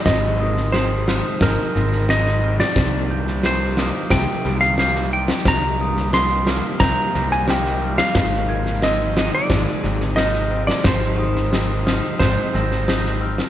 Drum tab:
SD |o--oo-o-o-oooo-o|o--oo-o-o-oooo-o|o--oo-o-o-oooo-o|o--oo-o-o-oooo-o|
BD |o-------o-------|o-------o-------|o-------o-------|o-------o-------|

SD |o--oo-o-o-oooo-o|
BD |o-------o-------|